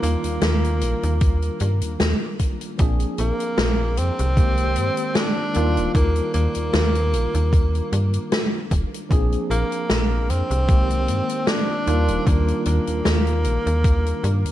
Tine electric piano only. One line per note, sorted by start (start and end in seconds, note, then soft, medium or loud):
0.00 2.71 D#3 medium
0.00 2.71 G3 medium
0.00 2.72 A#3 medium
0.00 2.72 D4 medium
0.00 2.73 F4 loud
2.78 4.29 F3 medium
2.78 4.29 A#3 medium
2.78 4.30 C4 medium
2.78 4.30 D4 medium
2.78 4.31 G#4 medium
4.35 5.47 D#3 medium
4.35 5.48 G#3 medium
4.35 5.48 A#3 medium
4.35 5.48 C4 medium
4.35 5.49 G4 medium
5.54 9.03 D#3 medium
5.54 9.03 G3 medium
5.54 9.03 A#3 medium
5.54 9.04 D4 medium
5.54 9.04 F4 loud
9.09 10.61 F3 medium
9.09 10.61 A#3 medium
9.09 10.61 C4 medium
9.09 10.62 D4 medium
9.09 10.62 G#4 medium
10.67 11.79 D#3 medium
10.67 11.80 G#3 medium
10.67 11.80 A#3 medium
10.67 11.80 C4 medium
10.67 11.81 G4 medium
11.86 14.52 D#3 medium
11.86 14.52 G3 medium
11.86 14.52 A#3 medium
11.86 14.52 D4 medium
11.86 14.52 F4 loud